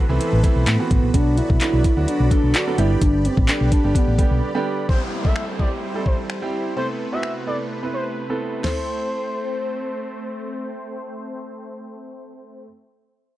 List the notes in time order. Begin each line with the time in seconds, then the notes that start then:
Already playing: A4 B4 B5
0.09 C2 E3 A3 B3 C4 E4
0.21 closed hi-hat
0.33 A1
0.43 E3 A3 B3 C4 E4, kick, closed hi-hat
0.56 B1
0.67 A2 B3, clap, closed hi-hat
0.79 E3 A3 B3 C4 F#4
0.91 A1, kick, closed hi-hat
1.03 A#1
1.14 B1 D3 F#3 B3 D4 F#4 D5, kick, closed hi-hat
1.37 E4, closed hi-hat
1.50 B1, kick
1.61 D3 F#3 B3 D4 E4, clap, closed hi-hat
1.73 B1
1.84 kick, closed hi-hat
1.97 D2 D3 F#3 B3 D4 F#4
2.08 D4, closed hi-hat
2.20 B1
2.31 D3 F#3 B3 D4 A4, kick, closed hi-hat
2.44 B1
2.55 F#4, clap, closed hi-hat
2.67 D3 F#3 B3 D4 A4
2.78 G1 D3 G3 B3 D4 E4 G4 B5, closed hi-hat
2.96 E4
3.01 G1 D4, kick, closed hi-hat
3.25 C4, closed hi-hat
3.37 A1, kick
3.48 D3 G3 B3 D4 G4, clap, closed hi-hat
3.61 B1
3.72 D4, kick, closed hi-hat
3.84 G1 D3 G3 B3 D4 G4
3.95 B3, kick, closed hi-hat
4.08 A1
4.18 D3 G3 B3 D4 G4, kick, closed hi-hat
4.31 B1
4.54 D3 G3 B3 D4 G4
4.89 G3 E4 C5, kick, downlifter
5.25 G3 C4 E4 A4 E5, kick
5.36 finger snap
5.59 G3 C4 E4 G4 D5, kick
5.95 G3 C4 E4 A4
6.06 C5, kick
6.30 finger snap
6.42 G3 C4 E4 G4
6.76 C3 A3 B3 C4 E4 A4 B4 C5
7.12 B3 C4 E4 F#4 E5
7.23 finger snap
7.47 B3 C4 E4 A4 D5
7.83 B3 C4 E4 B4
7.94 C5
8.29 B3 C4 E4 A4
8.62 A3 C4 E4 A4 C5, snare, floor tom, crash